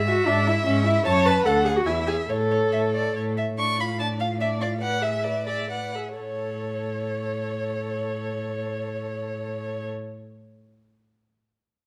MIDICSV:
0, 0, Header, 1, 5, 480
1, 0, Start_track
1, 0, Key_signature, 3, "major"
1, 0, Tempo, 396825
1, 1292, Time_signature, 3, 2, 24, 8
1, 2257, Tempo, 422833
1, 6097, Tempo, 483092
1, 9937, Tempo, 474684
1, 12717, End_track
2, 0, Start_track
2, 0, Title_t, "Violin"
2, 0, Program_c, 0, 40
2, 80, Note_on_c, 0, 76, 61
2, 177, Note_off_c, 0, 76, 0
2, 329, Note_on_c, 0, 76, 64
2, 426, Note_off_c, 0, 76, 0
2, 563, Note_on_c, 0, 76, 64
2, 660, Note_off_c, 0, 76, 0
2, 797, Note_on_c, 0, 76, 57
2, 894, Note_off_c, 0, 76, 0
2, 1037, Note_on_c, 0, 76, 60
2, 1133, Note_off_c, 0, 76, 0
2, 1271, Note_on_c, 0, 81, 62
2, 1368, Note_off_c, 0, 81, 0
2, 1519, Note_on_c, 0, 81, 57
2, 1615, Note_off_c, 0, 81, 0
2, 1761, Note_on_c, 0, 78, 57
2, 1857, Note_off_c, 0, 78, 0
2, 1999, Note_on_c, 0, 78, 56
2, 2096, Note_off_c, 0, 78, 0
2, 2250, Note_on_c, 0, 80, 48
2, 2342, Note_off_c, 0, 80, 0
2, 2489, Note_on_c, 0, 80, 49
2, 2580, Note_off_c, 0, 80, 0
2, 2737, Note_on_c, 0, 73, 47
2, 2828, Note_off_c, 0, 73, 0
2, 2987, Note_on_c, 0, 73, 45
2, 3078, Note_off_c, 0, 73, 0
2, 3228, Note_on_c, 0, 76, 61
2, 3319, Note_off_c, 0, 76, 0
2, 3479, Note_on_c, 0, 74, 59
2, 3713, Note_off_c, 0, 74, 0
2, 3723, Note_on_c, 0, 73, 48
2, 3814, Note_off_c, 0, 73, 0
2, 3969, Note_on_c, 0, 76, 53
2, 4059, Note_off_c, 0, 76, 0
2, 4210, Note_on_c, 0, 85, 71
2, 4450, Note_on_c, 0, 83, 57
2, 4467, Note_off_c, 0, 85, 0
2, 4666, Note_off_c, 0, 83, 0
2, 4672, Note_on_c, 0, 81, 60
2, 4763, Note_off_c, 0, 81, 0
2, 4905, Note_on_c, 0, 77, 58
2, 4996, Note_off_c, 0, 77, 0
2, 5140, Note_on_c, 0, 76, 56
2, 5231, Note_off_c, 0, 76, 0
2, 5373, Note_on_c, 0, 74, 62
2, 5464, Note_off_c, 0, 74, 0
2, 5600, Note_on_c, 0, 78, 64
2, 5843, Note_on_c, 0, 76, 55
2, 5860, Note_off_c, 0, 78, 0
2, 6310, Note_off_c, 0, 76, 0
2, 6316, Note_on_c, 0, 74, 50
2, 6541, Note_off_c, 0, 74, 0
2, 6547, Note_on_c, 0, 78, 42
2, 6792, Note_off_c, 0, 78, 0
2, 7040, Note_on_c, 0, 73, 38
2, 10702, Note_off_c, 0, 73, 0
2, 12717, End_track
3, 0, Start_track
3, 0, Title_t, "Violin"
3, 0, Program_c, 1, 40
3, 0, Note_on_c, 1, 76, 79
3, 1258, Note_off_c, 1, 76, 0
3, 1295, Note_on_c, 1, 81, 86
3, 1756, Note_off_c, 1, 81, 0
3, 1762, Note_on_c, 1, 78, 74
3, 2246, Note_off_c, 1, 78, 0
3, 2259, Note_on_c, 1, 76, 65
3, 2746, Note_on_c, 1, 73, 54
3, 2763, Note_off_c, 1, 76, 0
3, 3961, Note_off_c, 1, 73, 0
3, 4205, Note_on_c, 1, 74, 41
3, 4451, Note_on_c, 1, 77, 36
3, 4468, Note_off_c, 1, 74, 0
3, 4677, Note_on_c, 1, 74, 37
3, 4694, Note_off_c, 1, 77, 0
3, 4912, Note_on_c, 1, 77, 40
3, 4929, Note_off_c, 1, 74, 0
3, 5137, Note_off_c, 1, 77, 0
3, 5144, Note_on_c, 1, 74, 41
3, 5368, Note_on_c, 1, 77, 43
3, 5385, Note_off_c, 1, 74, 0
3, 5599, Note_off_c, 1, 77, 0
3, 5606, Note_on_c, 1, 74, 43
3, 5844, Note_on_c, 1, 76, 42
3, 5861, Note_off_c, 1, 74, 0
3, 6087, Note_on_c, 1, 74, 36
3, 6103, Note_off_c, 1, 76, 0
3, 6318, Note_on_c, 1, 76, 38
3, 6333, Note_off_c, 1, 74, 0
3, 6547, Note_off_c, 1, 76, 0
3, 6553, Note_on_c, 1, 74, 34
3, 6795, Note_on_c, 1, 76, 29
3, 6810, Note_off_c, 1, 74, 0
3, 7032, Note_off_c, 1, 76, 0
3, 7038, Note_on_c, 1, 73, 34
3, 10701, Note_off_c, 1, 73, 0
3, 12717, End_track
4, 0, Start_track
4, 0, Title_t, "Viola"
4, 0, Program_c, 2, 41
4, 93, Note_on_c, 2, 66, 84
4, 328, Note_on_c, 2, 62, 84
4, 346, Note_off_c, 2, 66, 0
4, 573, Note_on_c, 2, 64, 84
4, 591, Note_off_c, 2, 62, 0
4, 804, Note_off_c, 2, 64, 0
4, 811, Note_on_c, 2, 61, 84
4, 1037, Note_off_c, 2, 61, 0
4, 1044, Note_on_c, 2, 64, 89
4, 1281, Note_off_c, 2, 64, 0
4, 1291, Note_on_c, 2, 73, 107
4, 1523, Note_on_c, 2, 71, 94
4, 1541, Note_off_c, 2, 73, 0
4, 1760, Note_on_c, 2, 69, 88
4, 1778, Note_off_c, 2, 71, 0
4, 1992, Note_on_c, 2, 68, 78
4, 2010, Note_off_c, 2, 69, 0
4, 2135, Note_on_c, 2, 66, 79
4, 2153, Note_off_c, 2, 68, 0
4, 2251, Note_on_c, 2, 64, 80
4, 2269, Note_off_c, 2, 66, 0
4, 2491, Note_off_c, 2, 64, 0
4, 2498, Note_on_c, 2, 68, 76
4, 2589, Note_off_c, 2, 68, 0
4, 2737, Note_on_c, 2, 69, 80
4, 3933, Note_off_c, 2, 69, 0
4, 4202, Note_on_c, 2, 62, 43
4, 4434, Note_on_c, 2, 65, 38
4, 4451, Note_off_c, 2, 62, 0
4, 4666, Note_on_c, 2, 62, 37
4, 4683, Note_off_c, 2, 65, 0
4, 4907, Note_on_c, 2, 65, 37
4, 4924, Note_off_c, 2, 62, 0
4, 5132, Note_off_c, 2, 65, 0
4, 5139, Note_on_c, 2, 62, 40
4, 5369, Note_on_c, 2, 65, 40
4, 5386, Note_off_c, 2, 62, 0
4, 5594, Note_off_c, 2, 65, 0
4, 5601, Note_on_c, 2, 71, 49
4, 5841, Note_on_c, 2, 68, 42
4, 5858, Note_off_c, 2, 71, 0
4, 6094, Note_on_c, 2, 71, 36
4, 6109, Note_off_c, 2, 68, 0
4, 6315, Note_on_c, 2, 68, 35
4, 6330, Note_off_c, 2, 71, 0
4, 6547, Note_off_c, 2, 68, 0
4, 6553, Note_on_c, 2, 71, 31
4, 6798, Note_on_c, 2, 68, 27
4, 6813, Note_off_c, 2, 71, 0
4, 7038, Note_off_c, 2, 68, 0
4, 7044, Note_on_c, 2, 69, 37
4, 10704, Note_off_c, 2, 69, 0
4, 12717, End_track
5, 0, Start_track
5, 0, Title_t, "Cello"
5, 0, Program_c, 3, 42
5, 0, Note_on_c, 3, 44, 75
5, 278, Note_off_c, 3, 44, 0
5, 333, Note_on_c, 3, 44, 79
5, 757, Note_off_c, 3, 44, 0
5, 811, Note_on_c, 3, 44, 76
5, 1233, Note_off_c, 3, 44, 0
5, 1287, Note_on_c, 3, 42, 80
5, 1705, Note_off_c, 3, 42, 0
5, 1763, Note_on_c, 3, 38, 69
5, 2197, Note_off_c, 3, 38, 0
5, 2249, Note_on_c, 3, 40, 61
5, 2682, Note_off_c, 3, 40, 0
5, 2738, Note_on_c, 3, 45, 62
5, 3171, Note_off_c, 3, 45, 0
5, 3226, Note_on_c, 3, 45, 51
5, 3656, Note_off_c, 3, 45, 0
5, 3716, Note_on_c, 3, 45, 58
5, 4145, Note_off_c, 3, 45, 0
5, 4208, Note_on_c, 3, 45, 47
5, 6766, Note_off_c, 3, 45, 0
5, 7041, Note_on_c, 3, 45, 36
5, 10703, Note_off_c, 3, 45, 0
5, 12717, End_track
0, 0, End_of_file